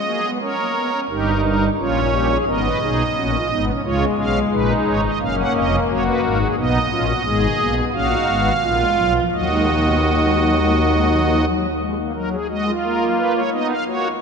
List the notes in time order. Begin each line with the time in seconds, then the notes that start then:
Already playing: D#5
0.06 A#3 G#4
0.23 B3
0.41 C#4 A#4 C#5
0.58 A#3
0.76 B3
0.93 C#4
1.10 G1 G2 D#4 G4 A#4
1.43 A#4
1.78 A#1 A#2 C#4 F4 C#5
2.13 G4
2.30 G#4
2.47 G#1 G#2 B3 A#4 D#5
2.64 B4
2.81 B1 B2 D#4 G#4
3.16 A#1 A#2 C#4 F#4
3.33 F4
3.50 G#1 G#2 B3 D#4
3.67 C#4
3.84 C#2 C#3 G#3 F4 C#5
4.18 B1 B2 C#4 F5
4.52 A#1 A#2 D#4 B4
4.86 G#1 G#2 C#5
5.04 D#5
5.21 F#1 F#2 A#3 C#4 F5
5.38 F#5
5.54 F1 F2 D#5
5.88 F#1 F#2 F#4 C#5
6.06 B4
6.23 G#1 G#2 A#4
6.41 G#4
6.57 B1 B2 B3 D#4 D#5
6.90 A#1 A#2 C#4 F4
7.07 F#4
7.25 G#1 G#2 G#3 G#4
7.59 B1 B2 A#3
7.76 B3
7.93 A#1 A#2 C#4 F#4 F5
8.11 D#4
8.28 G#1 G#2 B3
8.63 A#1 A#2 A#3 F4
8.80 G#3
8.97 B1 B2 F#3
9.15 F3
9.32 D#2 D#3 F#3 F#4 D#5
9.51 G#3
9.68 A#3
9.86 B3
10.04 A#3
10.22 G#3
10.40 F#3
10.57 G#3
10.74 A#3
10.91 G#3
11.09 F#3
11.26 F3
11.44 F#3
11.79 G#3
11.97 A#3
12.14 F#3 A#4
12.32 G#4
12.49 G#3 F#4 D#5
12.66 F4
12.83 A#3 A#4
13.17 B4
13.35 C#5
13.52 B3 D#4 D#5
13.69 F5
13.87 A#3 F#4 C#5